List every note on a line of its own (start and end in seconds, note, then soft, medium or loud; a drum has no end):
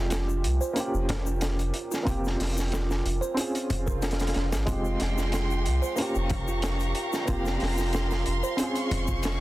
0.00 0.46 F1 medium
0.00 0.69 G#3 medium
0.00 0.70 C4 medium
0.00 0.71 F4 medium
0.00 0.72 G4 medium
0.10 0.27 F4 medium
0.10 snare medium
0.10 closed hi-hat medium
0.10 shaker medium
0.28 0.43 F4 medium
0.28 shaker soft
0.44 0.59 C2 medium
0.44 closed hi-hat medium
0.61 0.75 C5 medium
0.61 shaker medium
0.73 1.99 A#3 medium
0.73 2.00 C#4 medium
0.73 1.24 G4 medium
0.73 closed hi-hat medium
0.73 shaker medium
0.78 2.01 F4 medium
0.78 2.02 G4 medium
0.94 1.71 F1 medium
0.94 shaker soft
1.09 snare medium
1.09 closed hi-hat medium
1.09 low conga medium
1.26 1.41 F4 medium
1.26 shaker medium
1.41 snare loud
1.41 closed hi-hat medium
1.41 shaker medium
1.59 closed hi-hat soft
1.59 shaker soft
1.74 closed hi-hat medium
1.91 2.05 F4 medium
1.91 snare soft
1.91 shaker medium
2.03 2.36 F1 loud
2.03 3.29 A#3 medium
2.03 3.30 C4 medium
2.03 2.23 F4 loud
2.03 kick loud
2.03 closed hi-hat medium
2.07 3.31 F4 medium
2.07 3.32 G4 medium
2.07 shaker medium
2.24 snare soft
2.24 shaker soft
2.40 3.02 F1 medium
2.40 snare soft
2.40 open hi-hat medium
2.56 2.70 F4 medium
2.56 snare soft
2.56 shaker medium
2.71 2.87 F4 medium
2.71 snare loud
2.71 closed hi-hat medium
2.71 shaker soft
2.89 3.04 F4 medium
2.89 snare soft
2.89 shaker soft
3.05 3.20 F1 medium
3.05 closed hi-hat medium
3.21 3.36 C5 medium
3.21 shaker medium
3.34 4.60 C4 medium
3.34 4.61 C#4 medium
3.34 4.62 F4 medium
3.34 3.52 G#4 medium
3.34 closed hi-hat medium
3.34 swell medium
3.34 shaker medium
3.40 4.63 G#4 medium
3.55 closed hi-hat soft
3.55 shaker soft
3.70 4.33 F1 medium
3.70 closed hi-hat medium
3.70 low conga medium
3.86 3.95 A#4 medium
3.86 kick medium
3.86 shaker medium
4.02 4.19 F4 medium
4.02 snare medium
4.02 closed hi-hat medium
4.02 shaker medium
4.11 snare medium
4.11 closed hi-hat medium
4.20 snare medium
4.20 closed hi-hat medium
4.20 shaker soft
4.27 snare medium
4.27 closed hi-hat medium
4.34 4.55 F1 medium
4.34 snare medium
4.34 closed hi-hat medium
4.52 4.66 G#1 medium
4.52 4.67 G#4 medium
4.52 snare medium
4.52 closed hi-hat medium
4.52 shaker medium
4.66 4.97 F1 loud
4.66 5.91 G#3 medium
4.66 5.97 G#3 medium
4.66 5.92 C4 medium
4.66 4.84 F4 medium
4.66 9.40 F5 medium
4.66 5.97 G5 medium
4.66 5.97 C6 medium
4.66 kick medium
4.66 closed hi-hat medium
4.66 shaker medium
4.70 5.93 F4 medium
4.70 5.94 G4 medium
4.85 shaker soft
5.00 5.68 F1 medium
5.00 snare soft
5.00 closed hi-hat medium
5.17 5.31 F4 medium
5.17 snare soft
5.17 shaker medium
5.32 5.48 F4 medium
5.32 snare loud
5.32 closed hi-hat medium
5.32 shaker medium
5.49 5.64 F4 medium
5.49 shaker soft
5.66 5.81 C2 medium
5.66 closed hi-hat medium
5.82 5.97 C5 medium
5.82 shaker medium
5.96 7.21 A#3 medium
5.96 7.22 C#4 medium
5.96 6.46 G4 medium
5.96 8.56 G4 medium
5.96 8.56 A#5 medium
5.96 7.27 C#6 medium
5.96 closed hi-hat medium
5.96 shaker medium
6.00 7.23 F4 medium
6.00 7.24 G4 medium
6.15 6.93 F1 medium
6.15 shaker soft
6.30 kick medium
6.30 closed hi-hat medium
6.30 low conga medium
6.48 6.62 F4 medium
6.48 shaker medium
6.62 snare loud
6.62 closed hi-hat medium
6.62 shaker medium
6.80 closed hi-hat soft
6.80 shaker soft
6.95 closed hi-hat medium
7.13 7.27 F4 medium
7.13 snare soft
7.13 shaker medium
7.26 7.58 F1 loud
7.26 8.51 A#3 medium
7.26 8.53 C4 medium
7.26 7.45 F4 loud
7.26 9.40 C6 medium
7.26 kick medium
7.26 closed hi-hat medium
7.26 shaker medium
7.30 8.53 F4 medium
7.30 8.55 G4 medium
7.45 snare soft
7.45 shaker soft
7.60 8.24 F1 medium
7.60 snare medium
7.60 open hi-hat medium
7.78 7.92 F4 medium
7.78 snare soft
7.78 shaker medium
7.93 8.09 F4 medium
7.93 snare medium
7.93 closed hi-hat medium
7.93 shaker medium
8.11 8.25 F4 medium
8.11 snare medium
8.11 shaker soft
8.26 8.42 F1 medium
8.26 closed hi-hat medium
8.43 8.58 C5 loud
8.43 shaker medium
8.57 9.40 G#3 medium
8.57 9.40 C4 medium
8.57 9.40 C#4 medium
8.57 9.07 G#4 medium
8.57 9.40 C#6 medium
8.57 closed hi-hat medium
8.57 shaker medium
8.61 9.40 F4 medium
8.61 9.40 G#4 medium
8.75 closed hi-hat soft
8.75 shaker soft
8.91 9.40 F1 medium
8.91 closed hi-hat medium
8.91 low conga medium
9.07 9.23 F4 medium
9.07 kick medium
9.07 shaker medium
9.23 snare loud
9.23 closed hi-hat medium
9.23 shaker medium